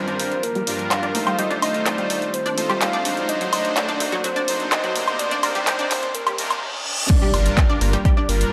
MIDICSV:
0, 0, Header, 1, 10, 480
1, 0, Start_track
1, 0, Key_signature, -2, "minor"
1, 0, Tempo, 476190
1, 1396, Time_signature, 4, 2, 24, 8
1, 8595, End_track
2, 0, Start_track
2, 0, Title_t, "Soft synth lead"
2, 0, Program_c, 0, 80
2, 0, Note_on_c, 0, 72, 94
2, 437, Note_on_c, 0, 70, 92
2, 452, Note_off_c, 0, 72, 0
2, 917, Note_on_c, 0, 77, 98
2, 932, Note_off_c, 0, 70, 0
2, 1391, Note_off_c, 0, 77, 0
2, 1397, Note_on_c, 0, 75, 107
2, 1505, Note_off_c, 0, 75, 0
2, 1637, Note_on_c, 0, 75, 93
2, 1877, Note_on_c, 0, 74, 101
2, 1893, Note_off_c, 0, 75, 0
2, 2358, Note_on_c, 0, 72, 98
2, 2373, Note_off_c, 0, 74, 0
2, 2837, Note_on_c, 0, 77, 100
2, 2852, Note_off_c, 0, 72, 0
2, 3311, Note_off_c, 0, 77, 0
2, 3317, Note_on_c, 0, 75, 104
2, 3539, Note_off_c, 0, 75, 0
2, 3557, Note_on_c, 0, 75, 96
2, 3798, Note_on_c, 0, 74, 94
2, 3813, Note_off_c, 0, 75, 0
2, 4271, Note_off_c, 0, 74, 0
2, 4277, Note_on_c, 0, 72, 91
2, 4757, Note_on_c, 0, 75, 101
2, 4772, Note_off_c, 0, 72, 0
2, 5237, Note_on_c, 0, 74, 98
2, 5252, Note_off_c, 0, 75, 0
2, 5471, Note_off_c, 0, 74, 0
2, 5477, Note_on_c, 0, 74, 94
2, 5717, Note_on_c, 0, 72, 97
2, 5732, Note_off_c, 0, 74, 0
2, 6190, Note_off_c, 0, 72, 0
2, 6196, Note_on_c, 0, 70, 79
2, 6642, Note_off_c, 0, 70, 0
2, 7155, Note_on_c, 0, 74, 123
2, 7835, Note_off_c, 0, 74, 0
2, 8116, Note_on_c, 0, 74, 109
2, 8356, Note_on_c, 0, 70, 102
2, 8371, Note_off_c, 0, 74, 0
2, 8595, Note_off_c, 0, 70, 0
2, 8595, End_track
3, 0, Start_track
3, 0, Title_t, "Supersaw synth"
3, 0, Program_c, 1, 81
3, 0, Note_on_c, 1, 43, 93
3, 0, Note_on_c, 1, 55, 86
3, 0, Note_on_c, 1, 62, 87
3, 0, Note_on_c, 1, 65, 85
3, 0, Note_on_c, 1, 70, 100
3, 167, Note_off_c, 1, 43, 0
3, 167, Note_off_c, 1, 55, 0
3, 167, Note_off_c, 1, 62, 0
3, 167, Note_off_c, 1, 65, 0
3, 167, Note_off_c, 1, 70, 0
3, 195, Note_on_c, 1, 43, 76
3, 195, Note_on_c, 1, 55, 67
3, 195, Note_on_c, 1, 62, 73
3, 195, Note_on_c, 1, 65, 68
3, 195, Note_on_c, 1, 70, 79
3, 330, Note_off_c, 1, 43, 0
3, 330, Note_off_c, 1, 55, 0
3, 330, Note_off_c, 1, 62, 0
3, 330, Note_off_c, 1, 65, 0
3, 330, Note_off_c, 1, 70, 0
3, 675, Note_on_c, 1, 43, 86
3, 675, Note_on_c, 1, 55, 81
3, 675, Note_on_c, 1, 62, 78
3, 675, Note_on_c, 1, 65, 80
3, 675, Note_on_c, 1, 70, 98
3, 1127, Note_off_c, 1, 43, 0
3, 1127, Note_off_c, 1, 55, 0
3, 1127, Note_off_c, 1, 62, 0
3, 1127, Note_off_c, 1, 65, 0
3, 1127, Note_off_c, 1, 70, 0
3, 1155, Note_on_c, 1, 63, 78
3, 1155, Note_on_c, 1, 72, 92
3, 1156, Note_on_c, 1, 57, 88
3, 1156, Note_on_c, 1, 65, 74
3, 1607, Note_off_c, 1, 57, 0
3, 1607, Note_off_c, 1, 63, 0
3, 1607, Note_off_c, 1, 65, 0
3, 1607, Note_off_c, 1, 72, 0
3, 1636, Note_on_c, 1, 57, 91
3, 1636, Note_on_c, 1, 63, 84
3, 1636, Note_on_c, 1, 65, 83
3, 1636, Note_on_c, 1, 72, 100
3, 2087, Note_off_c, 1, 57, 0
3, 2087, Note_off_c, 1, 63, 0
3, 2087, Note_off_c, 1, 65, 0
3, 2087, Note_off_c, 1, 72, 0
3, 2115, Note_on_c, 1, 57, 75
3, 2115, Note_on_c, 1, 63, 73
3, 2115, Note_on_c, 1, 65, 71
3, 2116, Note_on_c, 1, 72, 81
3, 2250, Note_off_c, 1, 57, 0
3, 2250, Note_off_c, 1, 63, 0
3, 2250, Note_off_c, 1, 65, 0
3, 2251, Note_off_c, 1, 72, 0
3, 2596, Note_on_c, 1, 57, 84
3, 2596, Note_on_c, 1, 65, 77
3, 2596, Note_on_c, 1, 72, 93
3, 2597, Note_on_c, 1, 63, 78
3, 3047, Note_off_c, 1, 57, 0
3, 3048, Note_off_c, 1, 63, 0
3, 3048, Note_off_c, 1, 65, 0
3, 3048, Note_off_c, 1, 72, 0
3, 3076, Note_on_c, 1, 54, 80
3, 3076, Note_on_c, 1, 62, 78
3, 3076, Note_on_c, 1, 63, 76
3, 3076, Note_on_c, 1, 72, 96
3, 3527, Note_off_c, 1, 54, 0
3, 3527, Note_off_c, 1, 62, 0
3, 3527, Note_off_c, 1, 63, 0
3, 3527, Note_off_c, 1, 72, 0
3, 3555, Note_on_c, 1, 63, 87
3, 3556, Note_on_c, 1, 54, 97
3, 3556, Note_on_c, 1, 62, 90
3, 3556, Note_on_c, 1, 72, 106
3, 4007, Note_off_c, 1, 54, 0
3, 4007, Note_off_c, 1, 62, 0
3, 4007, Note_off_c, 1, 63, 0
3, 4007, Note_off_c, 1, 72, 0
3, 4035, Note_on_c, 1, 54, 76
3, 4035, Note_on_c, 1, 62, 69
3, 4035, Note_on_c, 1, 63, 68
3, 4035, Note_on_c, 1, 72, 86
3, 4170, Note_off_c, 1, 62, 0
3, 4170, Note_off_c, 1, 72, 0
3, 4171, Note_off_c, 1, 54, 0
3, 4171, Note_off_c, 1, 63, 0
3, 4515, Note_on_c, 1, 62, 79
3, 4515, Note_on_c, 1, 63, 81
3, 4515, Note_on_c, 1, 72, 96
3, 4516, Note_on_c, 1, 54, 85
3, 4967, Note_off_c, 1, 54, 0
3, 4967, Note_off_c, 1, 62, 0
3, 4967, Note_off_c, 1, 63, 0
3, 4967, Note_off_c, 1, 72, 0
3, 4995, Note_on_c, 1, 48, 85
3, 4995, Note_on_c, 1, 58, 82
3, 4995, Note_on_c, 1, 62, 76
3, 4995, Note_on_c, 1, 63, 80
3, 4995, Note_on_c, 1, 72, 96
3, 5447, Note_off_c, 1, 48, 0
3, 5447, Note_off_c, 1, 58, 0
3, 5447, Note_off_c, 1, 62, 0
3, 5447, Note_off_c, 1, 63, 0
3, 5447, Note_off_c, 1, 72, 0
3, 5475, Note_on_c, 1, 48, 91
3, 5475, Note_on_c, 1, 58, 87
3, 5475, Note_on_c, 1, 62, 87
3, 5475, Note_on_c, 1, 63, 85
3, 5475, Note_on_c, 1, 72, 106
3, 5927, Note_off_c, 1, 48, 0
3, 5927, Note_off_c, 1, 58, 0
3, 5927, Note_off_c, 1, 62, 0
3, 5927, Note_off_c, 1, 63, 0
3, 5927, Note_off_c, 1, 72, 0
3, 5955, Note_on_c, 1, 48, 78
3, 5955, Note_on_c, 1, 58, 71
3, 5955, Note_on_c, 1, 62, 69
3, 5955, Note_on_c, 1, 63, 71
3, 5955, Note_on_c, 1, 72, 86
3, 6090, Note_off_c, 1, 48, 0
3, 6090, Note_off_c, 1, 58, 0
3, 6090, Note_off_c, 1, 63, 0
3, 6090, Note_off_c, 1, 72, 0
3, 6091, Note_off_c, 1, 62, 0
3, 6435, Note_on_c, 1, 48, 91
3, 6435, Note_on_c, 1, 58, 83
3, 6435, Note_on_c, 1, 70, 98
3, 6436, Note_on_c, 1, 62, 85
3, 6436, Note_on_c, 1, 63, 78
3, 6570, Note_off_c, 1, 48, 0
3, 6570, Note_off_c, 1, 58, 0
3, 6570, Note_off_c, 1, 70, 0
3, 6571, Note_off_c, 1, 62, 0
3, 6571, Note_off_c, 1, 63, 0
3, 7394, Note_on_c, 1, 43, 95
3, 7394, Note_on_c, 1, 65, 88
3, 7395, Note_on_c, 1, 55, 87
3, 7395, Note_on_c, 1, 62, 84
3, 7395, Note_on_c, 1, 70, 98
3, 7847, Note_off_c, 1, 43, 0
3, 7847, Note_off_c, 1, 55, 0
3, 7847, Note_off_c, 1, 62, 0
3, 7847, Note_off_c, 1, 65, 0
3, 7847, Note_off_c, 1, 70, 0
3, 7874, Note_on_c, 1, 55, 69
3, 7874, Note_on_c, 1, 65, 65
3, 7874, Note_on_c, 1, 70, 81
3, 7875, Note_on_c, 1, 43, 76
3, 7875, Note_on_c, 1, 62, 70
3, 8010, Note_off_c, 1, 43, 0
3, 8010, Note_off_c, 1, 55, 0
3, 8010, Note_off_c, 1, 62, 0
3, 8010, Note_off_c, 1, 65, 0
3, 8010, Note_off_c, 1, 70, 0
3, 8355, Note_on_c, 1, 43, 84
3, 8355, Note_on_c, 1, 55, 81
3, 8355, Note_on_c, 1, 62, 82
3, 8355, Note_on_c, 1, 65, 79
3, 8355, Note_on_c, 1, 70, 97
3, 8595, Note_off_c, 1, 43, 0
3, 8595, Note_off_c, 1, 55, 0
3, 8595, Note_off_c, 1, 62, 0
3, 8595, Note_off_c, 1, 65, 0
3, 8595, Note_off_c, 1, 70, 0
3, 8595, End_track
4, 0, Start_track
4, 0, Title_t, "Ambient pad"
4, 0, Program_c, 2, 92
4, 0, Note_on_c, 2, 51, 87
4, 0, Note_on_c, 2, 55, 76
4, 0, Note_on_c, 2, 58, 81
4, 0, Note_on_c, 2, 65, 83
4, 0, Note_on_c, 2, 70, 94
4, 1358, Note_off_c, 2, 51, 0
4, 1358, Note_off_c, 2, 55, 0
4, 1358, Note_off_c, 2, 70, 0
4, 1377, Note_off_c, 2, 58, 0
4, 1396, Note_on_c, 2, 60, 82
4, 1396, Note_on_c, 2, 72, 92
4, 1397, Note_on_c, 2, 51, 82
4, 1397, Note_on_c, 2, 57, 77
4, 3277, Note_off_c, 2, 65, 0
4, 3297, Note_off_c, 2, 60, 0
4, 3316, Note_on_c, 2, 66, 78
4, 3317, Note_on_c, 2, 78, 80
4, 5198, Note_off_c, 2, 57, 0
4, 5217, Note_off_c, 2, 66, 0
4, 5234, Note_on_c, 2, 58, 79
4, 5235, Note_on_c, 2, 67, 81
4, 6636, Note_off_c, 2, 51, 0
4, 6636, Note_off_c, 2, 72, 0
4, 6643, Note_off_c, 2, 78, 0
4, 6661, Note_off_c, 2, 58, 0
4, 6661, Note_off_c, 2, 67, 0
4, 7156, Note_on_c, 2, 55, 80
4, 7157, Note_on_c, 2, 50, 86
4, 7157, Note_on_c, 2, 58, 81
4, 7157, Note_on_c, 2, 65, 80
4, 7157, Note_on_c, 2, 67, 95
4, 8595, Note_off_c, 2, 50, 0
4, 8595, Note_off_c, 2, 55, 0
4, 8595, Note_off_c, 2, 58, 0
4, 8595, Note_off_c, 2, 65, 0
4, 8595, Note_off_c, 2, 67, 0
4, 8595, End_track
5, 0, Start_track
5, 0, Title_t, "Synth pluck"
5, 0, Program_c, 3, 84
5, 77, Note_on_c, 3, 62, 99
5, 128, Note_off_c, 3, 62, 0
5, 557, Note_on_c, 3, 55, 74
5, 608, Note_off_c, 3, 55, 0
5, 1037, Note_on_c, 3, 62, 102
5, 1068, Note_off_c, 3, 62, 0
5, 1156, Note_on_c, 3, 58, 75
5, 1235, Note_off_c, 3, 58, 0
5, 1277, Note_on_c, 3, 55, 104
5, 1308, Note_off_c, 3, 55, 0
5, 1396, Note_on_c, 3, 55, 102
5, 1427, Note_off_c, 3, 55, 0
5, 1517, Note_on_c, 3, 62, 100
5, 1568, Note_off_c, 3, 62, 0
5, 1997, Note_on_c, 3, 55, 73
5, 2048, Note_off_c, 3, 55, 0
5, 2477, Note_on_c, 3, 62, 106
5, 2508, Note_off_c, 3, 62, 0
5, 2596, Note_on_c, 3, 57, 77
5, 2674, Note_off_c, 3, 57, 0
5, 2717, Note_on_c, 3, 55, 106
5, 2748, Note_off_c, 3, 55, 0
5, 2835, Note_on_c, 3, 55, 98
5, 2867, Note_off_c, 3, 55, 0
5, 2957, Note_on_c, 3, 62, 106
5, 3008, Note_off_c, 3, 62, 0
5, 3436, Note_on_c, 3, 54, 78
5, 3488, Note_off_c, 3, 54, 0
5, 3916, Note_on_c, 3, 62, 100
5, 3948, Note_off_c, 3, 62, 0
5, 4035, Note_on_c, 3, 57, 77
5, 4114, Note_off_c, 3, 57, 0
5, 4156, Note_on_c, 3, 54, 111
5, 4187, Note_off_c, 3, 54, 0
5, 4275, Note_on_c, 3, 54, 106
5, 4307, Note_off_c, 3, 54, 0
5, 4396, Note_on_c, 3, 62, 103
5, 4448, Note_off_c, 3, 62, 0
5, 4876, Note_on_c, 3, 54, 80
5, 4928, Note_off_c, 3, 54, 0
5, 5355, Note_on_c, 3, 62, 102
5, 5387, Note_off_c, 3, 62, 0
5, 5474, Note_on_c, 3, 58, 73
5, 5554, Note_off_c, 3, 58, 0
5, 5596, Note_on_c, 3, 55, 105
5, 5627, Note_off_c, 3, 55, 0
5, 5715, Note_on_c, 3, 55, 107
5, 5747, Note_off_c, 3, 55, 0
5, 5836, Note_on_c, 3, 62, 103
5, 5888, Note_off_c, 3, 62, 0
5, 6316, Note_on_c, 3, 55, 75
5, 6368, Note_off_c, 3, 55, 0
5, 7276, Note_on_c, 3, 55, 80
5, 7276, Note_on_c, 3, 67, 55
5, 7328, Note_off_c, 3, 55, 0
5, 7328, Note_off_c, 3, 67, 0
5, 7756, Note_on_c, 3, 62, 98
5, 7756, Note_on_c, 3, 74, 70
5, 7788, Note_off_c, 3, 62, 0
5, 7788, Note_off_c, 3, 74, 0
5, 7875, Note_on_c, 3, 58, 77
5, 7875, Note_on_c, 3, 70, 53
5, 7954, Note_off_c, 3, 58, 0
5, 7954, Note_off_c, 3, 70, 0
5, 7996, Note_on_c, 3, 55, 103
5, 7996, Note_on_c, 3, 67, 77
5, 8027, Note_off_c, 3, 55, 0
5, 8027, Note_off_c, 3, 67, 0
5, 8115, Note_on_c, 3, 55, 112
5, 8115, Note_on_c, 3, 67, 71
5, 8147, Note_off_c, 3, 55, 0
5, 8147, Note_off_c, 3, 67, 0
5, 8236, Note_on_c, 3, 62, 103
5, 8236, Note_on_c, 3, 74, 70
5, 8288, Note_off_c, 3, 62, 0
5, 8288, Note_off_c, 3, 74, 0
5, 8595, End_track
6, 0, Start_track
6, 0, Title_t, "Analog synth bass"
6, 0, Program_c, 4, 38
6, 7395, Note_on_c, 4, 31, 103
6, 7551, Note_off_c, 4, 31, 0
6, 7875, Note_on_c, 4, 31, 82
6, 8031, Note_off_c, 4, 31, 0
6, 8355, Note_on_c, 4, 31, 92
6, 8511, Note_off_c, 4, 31, 0
6, 8595, End_track
7, 0, Start_track
7, 0, Title_t, "Impact"
7, 0, Program_c, 5, 103
7, 7155, Note_on_c, 5, 60, 79
7, 8595, Note_off_c, 5, 60, 0
7, 8595, End_track
8, 0, Start_track
8, 0, Title_t, "Reverse cymbal"
8, 0, Program_c, 6, 119
8, 6195, Note_on_c, 6, 60, 77
8, 7155, Note_off_c, 6, 60, 0
8, 8595, End_track
9, 0, Start_track
9, 0, Title_t, "Riser"
9, 0, Program_c, 7, 103
9, 0, Note_on_c, 7, 60, 81
9, 7155, Note_off_c, 7, 60, 0
9, 8595, End_track
10, 0, Start_track
10, 0, Title_t, "Drums"
10, 77, Note_on_c, 9, 42, 37
10, 178, Note_off_c, 9, 42, 0
10, 196, Note_on_c, 9, 46, 102
10, 297, Note_off_c, 9, 46, 0
10, 318, Note_on_c, 9, 42, 38
10, 419, Note_off_c, 9, 42, 0
10, 436, Note_on_c, 9, 42, 85
10, 537, Note_off_c, 9, 42, 0
10, 558, Note_on_c, 9, 42, 36
10, 659, Note_off_c, 9, 42, 0
10, 677, Note_on_c, 9, 46, 106
10, 778, Note_off_c, 9, 46, 0
10, 798, Note_on_c, 9, 42, 36
10, 899, Note_off_c, 9, 42, 0
10, 917, Note_on_c, 9, 42, 84
10, 917, Note_on_c, 9, 76, 84
10, 919, Note_on_c, 9, 39, 113
10, 1018, Note_off_c, 9, 42, 0
10, 1018, Note_off_c, 9, 76, 0
10, 1020, Note_off_c, 9, 39, 0
10, 1038, Note_on_c, 9, 42, 36
10, 1139, Note_off_c, 9, 42, 0
10, 1157, Note_on_c, 9, 46, 104
10, 1258, Note_off_c, 9, 46, 0
10, 1278, Note_on_c, 9, 42, 37
10, 1278, Note_on_c, 9, 76, 82
10, 1379, Note_off_c, 9, 42, 0
10, 1379, Note_off_c, 9, 76, 0
10, 1397, Note_on_c, 9, 42, 99
10, 1498, Note_off_c, 9, 42, 0
10, 1518, Note_on_c, 9, 42, 39
10, 1619, Note_off_c, 9, 42, 0
10, 1637, Note_on_c, 9, 46, 100
10, 1637, Note_on_c, 9, 76, 80
10, 1738, Note_off_c, 9, 46, 0
10, 1738, Note_off_c, 9, 76, 0
10, 1758, Note_on_c, 9, 42, 38
10, 1859, Note_off_c, 9, 42, 0
10, 1877, Note_on_c, 9, 42, 88
10, 1879, Note_on_c, 9, 39, 100
10, 1978, Note_off_c, 9, 42, 0
10, 1980, Note_off_c, 9, 39, 0
10, 1999, Note_on_c, 9, 42, 37
10, 2099, Note_off_c, 9, 42, 0
10, 2117, Note_on_c, 9, 46, 101
10, 2218, Note_off_c, 9, 46, 0
10, 2238, Note_on_c, 9, 42, 36
10, 2339, Note_off_c, 9, 42, 0
10, 2357, Note_on_c, 9, 42, 88
10, 2458, Note_off_c, 9, 42, 0
10, 2478, Note_on_c, 9, 42, 40
10, 2579, Note_off_c, 9, 42, 0
10, 2597, Note_on_c, 9, 46, 103
10, 2697, Note_off_c, 9, 46, 0
10, 2717, Note_on_c, 9, 42, 38
10, 2717, Note_on_c, 9, 76, 64
10, 2818, Note_off_c, 9, 42, 0
10, 2818, Note_off_c, 9, 76, 0
10, 2836, Note_on_c, 9, 42, 88
10, 2838, Note_on_c, 9, 39, 118
10, 2937, Note_off_c, 9, 42, 0
10, 2939, Note_off_c, 9, 39, 0
10, 2957, Note_on_c, 9, 42, 37
10, 3058, Note_off_c, 9, 42, 0
10, 3076, Note_on_c, 9, 46, 106
10, 3176, Note_off_c, 9, 46, 0
10, 3197, Note_on_c, 9, 42, 40
10, 3298, Note_off_c, 9, 42, 0
10, 3315, Note_on_c, 9, 42, 100
10, 3416, Note_off_c, 9, 42, 0
10, 3437, Note_on_c, 9, 42, 44
10, 3538, Note_off_c, 9, 42, 0
10, 3555, Note_on_c, 9, 46, 100
10, 3555, Note_on_c, 9, 76, 81
10, 3656, Note_off_c, 9, 46, 0
10, 3656, Note_off_c, 9, 76, 0
10, 3676, Note_on_c, 9, 42, 42
10, 3777, Note_off_c, 9, 42, 0
10, 3795, Note_on_c, 9, 42, 90
10, 3797, Note_on_c, 9, 39, 114
10, 3896, Note_off_c, 9, 42, 0
10, 3898, Note_off_c, 9, 39, 0
10, 3916, Note_on_c, 9, 42, 39
10, 4017, Note_off_c, 9, 42, 0
10, 4035, Note_on_c, 9, 46, 104
10, 4136, Note_off_c, 9, 46, 0
10, 4156, Note_on_c, 9, 42, 38
10, 4257, Note_off_c, 9, 42, 0
10, 4276, Note_on_c, 9, 42, 93
10, 4376, Note_off_c, 9, 42, 0
10, 4397, Note_on_c, 9, 42, 42
10, 4497, Note_off_c, 9, 42, 0
10, 4516, Note_on_c, 9, 46, 103
10, 4616, Note_off_c, 9, 46, 0
10, 4636, Note_on_c, 9, 42, 42
10, 4737, Note_off_c, 9, 42, 0
10, 4756, Note_on_c, 9, 42, 94
10, 4756, Note_on_c, 9, 76, 82
10, 4757, Note_on_c, 9, 39, 117
10, 4856, Note_off_c, 9, 42, 0
10, 4856, Note_off_c, 9, 76, 0
10, 4858, Note_off_c, 9, 39, 0
10, 4876, Note_on_c, 9, 42, 40
10, 4977, Note_off_c, 9, 42, 0
10, 4995, Note_on_c, 9, 46, 98
10, 5096, Note_off_c, 9, 46, 0
10, 5116, Note_on_c, 9, 42, 41
10, 5116, Note_on_c, 9, 76, 82
10, 5217, Note_off_c, 9, 42, 0
10, 5217, Note_off_c, 9, 76, 0
10, 5235, Note_on_c, 9, 42, 103
10, 5336, Note_off_c, 9, 42, 0
10, 5356, Note_on_c, 9, 42, 44
10, 5457, Note_off_c, 9, 42, 0
10, 5475, Note_on_c, 9, 46, 98
10, 5475, Note_on_c, 9, 76, 79
10, 5576, Note_off_c, 9, 46, 0
10, 5576, Note_off_c, 9, 76, 0
10, 5596, Note_on_c, 9, 42, 42
10, 5697, Note_off_c, 9, 42, 0
10, 5715, Note_on_c, 9, 42, 95
10, 5717, Note_on_c, 9, 39, 112
10, 5816, Note_off_c, 9, 42, 0
10, 5818, Note_off_c, 9, 39, 0
10, 5836, Note_on_c, 9, 42, 41
10, 5937, Note_off_c, 9, 42, 0
10, 5955, Note_on_c, 9, 46, 100
10, 5957, Note_on_c, 9, 39, 59
10, 6056, Note_off_c, 9, 46, 0
10, 6058, Note_off_c, 9, 39, 0
10, 6076, Note_on_c, 9, 42, 41
10, 6177, Note_off_c, 9, 42, 0
10, 6195, Note_on_c, 9, 42, 93
10, 6296, Note_off_c, 9, 42, 0
10, 6316, Note_on_c, 9, 42, 43
10, 6316, Note_on_c, 9, 76, 85
10, 6417, Note_off_c, 9, 42, 0
10, 6417, Note_off_c, 9, 76, 0
10, 6435, Note_on_c, 9, 46, 100
10, 6536, Note_off_c, 9, 46, 0
10, 6557, Note_on_c, 9, 42, 44
10, 6557, Note_on_c, 9, 76, 66
10, 6658, Note_off_c, 9, 42, 0
10, 6658, Note_off_c, 9, 76, 0
10, 7155, Note_on_c, 9, 36, 122
10, 7155, Note_on_c, 9, 42, 58
10, 7155, Note_on_c, 9, 49, 111
10, 7256, Note_off_c, 9, 36, 0
10, 7256, Note_off_c, 9, 42, 0
10, 7256, Note_off_c, 9, 49, 0
10, 7396, Note_on_c, 9, 46, 96
10, 7396, Note_on_c, 9, 76, 71
10, 7497, Note_off_c, 9, 46, 0
10, 7497, Note_off_c, 9, 76, 0
10, 7516, Note_on_c, 9, 42, 67
10, 7617, Note_off_c, 9, 42, 0
10, 7635, Note_on_c, 9, 36, 115
10, 7635, Note_on_c, 9, 42, 55
10, 7637, Note_on_c, 9, 39, 122
10, 7736, Note_off_c, 9, 36, 0
10, 7736, Note_off_c, 9, 42, 0
10, 7738, Note_off_c, 9, 39, 0
10, 7875, Note_on_c, 9, 46, 108
10, 7976, Note_off_c, 9, 46, 0
10, 7996, Note_on_c, 9, 42, 67
10, 8097, Note_off_c, 9, 42, 0
10, 8115, Note_on_c, 9, 36, 123
10, 8115, Note_on_c, 9, 42, 56
10, 8216, Note_off_c, 9, 36, 0
10, 8216, Note_off_c, 9, 42, 0
10, 8355, Note_on_c, 9, 46, 109
10, 8456, Note_off_c, 9, 46, 0
10, 8476, Note_on_c, 9, 42, 69
10, 8577, Note_off_c, 9, 42, 0
10, 8595, End_track
0, 0, End_of_file